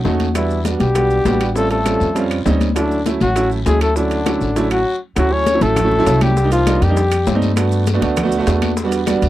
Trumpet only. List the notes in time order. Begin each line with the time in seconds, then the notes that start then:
0.36 E4
0.80 G4
1.57 A4
1.72 A4
2.76 D4
3.22 F#4
3.67 G#4
3.82 A4
3.97 D4
4.71 F#4
5.17 F#4
5.32 C#5
5.62 A4
6.22 G4
6.52 F4
6.82 G4